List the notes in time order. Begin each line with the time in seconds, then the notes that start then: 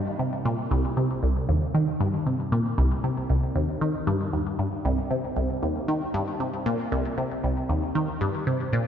0.19 C3
0.45 A#2
0.71 C2
0.97 C3
1.23 C2
1.49 D#2
1.75 D#3
2.00 G2
2.26 C3
2.52 A#2
2.78 C2
3.04 C3
3.30 C2
3.55 D#2
3.81 D#3
4.07 G2
4.33 D#2
4.59 G2
4.85 C2
5.11 C3
5.36 C2
5.62 D#2
5.88 D#3
6.14 G2
6.40 C3
6.66 A#2
6.92 C2
7.18 C3
7.44 C2
7.69 D#2
7.95 D#3
8.21 G2
8.47 C3
8.73 A#2